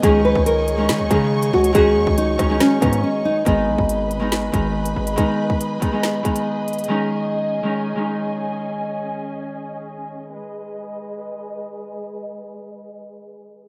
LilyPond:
<<
  \new Staff \with { instrumentName = "String section" } { \time 4/4 \key gis \minor \tempo 4 = 140 << { <gis' cis'' cis'''>1~ | <gis' cis'' cis'''>1 | <gis' b' b''>1~ | <gis' b' b''>1 |
<cis' gis''>1~ | <cis' gis''>1 | <gis gis' b' dis''>1~ | <gis gis' b' dis''>1 | } \\ { dis''1~ | dis''1 | dis''1~ | dis''1~ |
dis''1~ | dis''1 | r1 | r1 | } >> }
  \new Staff \with { instrumentName = "Nylon-string guitar" } { \time 4/4 \key gis \minor gis'8 b'8 ais'4 r8 gis'4 fis'8 | gis'4 dis'4 cis'8 b8 cis'8 dis'8 | r1 | r1 |
r1 | r1 | r1 | r1 | }
  \new Staff \with { instrumentName = "Harp" } { \time 4/4 \key gis \minor <dis gis cis' dis'>4. r16 <dis gis cis' dis'>8 r16 <dis gis cis' dis'>4~ <dis gis cis' dis'>16 r16 | <dis gis cis' fis'>4~ <dis gis cis' fis'>16 r16 <dis gis cis' dis'>16 <dis gis cis' dis'>8 r16 <dis gis cis' dis'>4~ <dis gis cis' dis'>16 r16 | <dis gis b dis'>4. r16 <dis gis b dis'>8 r16 <dis gis b dis'>4~ <dis gis b dis'>16 r16 | <dis gis b dis'>4~ <dis gis b dis'>16 r16 <dis gis b dis'>16 <dis gis b dis'>8 r16 <dis gis b dis'>4~ <dis gis b dis'>16 r16 |
<dis gis cis' dis'>4. r16 <dis gis cis' dis'>8 r16 <dis gis cis' dis'>4~ <dis gis cis' dis'>16 r16 | r1 | r1 | r1 | }
  \new Staff \with { instrumentName = "808-style bass" } { \clef bass \time 4/4 \key gis \minor cis,8. cis,4~ cis,16 e16 cis,16 cis4 cis,8 | cis,8 e,16 cis,8. cis,8 r8 gis,8 r4 | gis,,8 b,,16 gis,,4.~ gis,,16 gis,,4 gis,,8 | r1 |
r1 | r1 | r1 | r1 | }
  \new DrumStaff \with { instrumentName = "Drums" } \drummode { \time 4/4 <hh bd>8. bd16 hh8 hh8 <hh sn>8 <hh bd>8 r16 hh8 hh16 | <hh bd>8. bd16 hh8 <hh bd ss>8 <hh sn>8 <hh bd>16 hh16 r4 | <hh bd>8. bd16 hh8 hh8 <hh sn>8 <hh bd>8 r16 hh8 hh16 | <hh bd>8. bd16 hh8 <hh bd>8 <hh sn>8 <hh bd>16 hh16 r8 hh32 hh32 hh32 hh32 |
r4 r4 r4 r4 | r4 r4 r4 r4 | r4 r4 r4 r4 | r4 r4 r4 r4 | }
>>